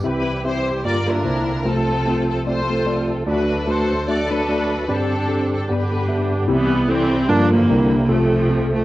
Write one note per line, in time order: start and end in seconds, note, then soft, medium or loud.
0.04 0.81 C2 medium
0.04 0.81 C3 soft
0.04 0.84 E3 medium
0.04 0.84 G3 soft
0.04 0.29 C4 medium
0.04 0.84 C4 soft
0.04 0.29 E4 medium
0.04 0.45 E4 medium
0.04 0.29 G4 medium
0.04 0.45 G4 medium
0.04 0.84 G4 medium
0.04 0.42 B4 medium
0.04 0.29 E5 medium
0.45 0.69 C4 medium
0.45 0.69 E4 medium
0.45 0.83 E4 medium
0.45 0.69 G4 medium
0.45 0.83 G4 medium
0.45 0.86 C5 medium
0.45 0.69 E5 medium
0.85 1.23 G2 medium
0.85 1.25 D3 soft
0.85 1.26 G3 soft
0.85 0.98 A#3 medium
0.85 1.25 A#3 medium
0.85 0.98 F4 medium
0.85 1.23 F4 medium
0.85 1.26 F4 medium
0.85 0.98 G4 medium
0.85 1.07 A#4 medium
0.85 1.07 D5 medium
0.85 0.98 D5 medium
1.07 1.17 A#3 medium
1.07 1.62 D4 medium
1.07 1.62 E4 medium
1.07 1.17 F4 medium
1.07 1.17 G4 medium
1.07 1.66 A#4 medium
1.07 1.17 D5 medium
1.24 1.63 C2 medium
1.24 1.63 C3 medium
1.24 1.67 D3 medium
1.24 1.50 A#3 medium
1.24 1.67 A#3 soft
1.24 1.64 C4 medium
1.24 1.49 D4 medium
1.24 1.50 E4 medium
1.24 1.67 E4 medium
1.24 1.50 C5 medium
1.65 3.23 C2 medium
1.65 3.23 C3 medium
1.65 3.24 C3 medium
1.65 3.24 F3 soft
1.65 1.90 A3 medium
1.65 3.23 A3 soft
1.65 1.90 C4 medium
1.65 3.24 C4 medium
1.65 2.44 C4 medium
1.65 1.90 F4 medium
1.65 2.43 F4 medium
1.65 3.24 A4 medium
1.65 2.28 A4 medium
1.65 1.90 C5 medium
2.06 2.31 A3 medium
2.06 2.31 C4 medium
2.06 2.31 F4 medium
2.06 2.31 A4 medium
2.29 2.45 A4 medium
2.46 2.59 A3 medium
2.46 2.59 C4 medium
2.46 3.23 F4 medium
2.46 2.59 F4 medium
2.46 3.23 A4 medium
2.46 3.05 C5 medium
2.46 2.59 D5 medium
2.69 2.79 A3 medium
2.69 2.79 C4 medium
2.69 2.79 F4 medium
2.69 2.79 A4 medium
2.86 3.11 A3 medium
2.86 3.11 C4 medium
2.86 3.11 F4 medium
2.86 3.11 D5 medium
3.26 4.84 D2 soft
3.26 4.84 D3 medium
3.26 3.32 E3 soft
3.26 3.51 A3 medium
3.26 4.85 A3 soft
3.26 3.51 D4 medium
3.26 4.85 D4 soft
3.26 4.04 D4 medium
3.26 3.52 F#4 medium
3.26 3.68 F#4 medium
3.26 4.85 A4 medium
3.26 3.65 B4 medium
3.26 3.52 D5 medium
3.31 4.87 F#3 medium
3.67 3.92 A3 medium
3.67 3.92 D4 medium
3.67 3.92 F#4 medium
3.67 4.07 F#4 medium
3.67 4.07 A4 medium
3.67 3.92 B4 medium
3.67 4.09 C5 medium
4.08 4.21 A3 medium
4.08 4.20 D4 medium
4.08 4.30 F#4 medium
4.08 4.21 F#4 medium
4.08 4.85 A4 medium
4.08 4.31 D5 medium
4.08 4.21 E5 medium
4.30 4.40 A3 medium
4.30 4.40 D4 medium
4.30 4.84 D4 medium
4.30 4.40 F#4 medium
4.30 4.85 F#4 medium
4.30 4.88 B4 medium
4.30 4.40 D5 medium
4.49 4.73 A3 medium
4.49 4.73 D4 medium
4.49 4.73 F#4 medium
4.49 4.73 D5 medium
4.88 5.65 G2 medium
4.88 5.66 D3 medium
4.88 5.67 G3 soft
4.88 5.67 C4 soft
4.88 5.13 C4 medium
4.88 5.66 C4 medium
4.88 5.13 D4 medium
4.88 5.66 D4 medium
4.88 5.67 G4 medium
4.88 5.13 G4 medium
4.88 5.53 A4 medium
4.88 5.13 D5 medium
5.28 5.53 C4 medium
5.28 5.53 D4 medium
5.28 5.53 G4 medium
5.28 5.53 A4 medium
5.54 5.69 A4 medium
5.67 6.46 G2 medium
5.67 6.47 D3 medium
5.67 6.47 G3 soft
5.67 6.47 B3 soft
5.67 5.82 B3 medium
5.67 5.81 D4 medium
5.67 6.46 D4 medium
5.67 6.47 G4 medium
5.67 5.82 G4 medium
5.67 5.82 D5 medium
5.72 6.47 G4 medium
5.72 6.34 B4 medium
5.92 6.01 B3 medium
5.92 6.01 D4 medium
5.92 6.01 G4 medium
5.92 6.01 A4 medium
6.08 6.33 B3 medium
6.08 6.33 D4 medium
6.08 6.33 G4 soft
6.08 6.33 E5 medium
6.48 7.25 C2 medium
6.48 7.25 C3 medium
6.48 7.28 C3 medium
6.48 6.87 E3 medium
6.48 7.28 G3 medium
6.48 6.88 G3 medium
6.48 6.87 B3 loud
6.48 6.73 C4 medium
6.48 6.73 E4 medium
6.48 7.28 E4 medium
6.48 6.73 G4 loud
6.88 7.26 E3 medium
6.88 7.26 G3 medium
6.88 7.13 C4 medium
6.88 7.29 C4 loud
6.88 7.13 E4 medium
6.88 7.13 A4 medium
7.29 7.67 G2 medium
7.29 7.67 D3 medium
7.29 7.66 F3 medium
7.29 7.70 F3 medium
7.29 7.53 G3 medium
7.29 7.68 G3 medium
7.29 7.53 A#3 medium
7.29 7.50 A#3 medium
7.29 7.67 A#3 medium
7.29 7.52 D4 loud
7.29 7.53 D4 medium
7.29 7.69 F4 medium
7.29 7.54 F4 medium
7.29 7.54 A#4 medium
7.51 8.05 D3 medium
7.51 8.05 E3 medium
7.51 8.05 A#3 loud
7.69 8.07 C2 medium
7.69 8.07 C3 medium
7.69 8.09 D3 medium
7.69 8.09 G3 medium
7.69 7.94 G3 medium
7.69 8.09 A#3 medium
7.69 8.08 C4 medium
7.69 7.94 C4 medium
7.69 7.94 D4 medium
7.69 8.09 E4 medium
7.69 7.94 E4 medium
7.69 7.94 A#4 medium
8.08 8.85 C2 medium
8.08 8.85 C3 medium
8.08 8.85 F3 medium
8.08 8.15 G#3 soft
8.08 8.71 A3 loud
8.08 8.33 C4 medium
8.08 8.85 C4 medium
8.08 8.34 F4 medium
8.08 8.34 A4 loud
8.14 8.85 A3 medium
8.49 8.74 C4 medium
8.49 8.74 F4 medium
8.49 8.74 A4 medium
8.72 8.85 A3 medium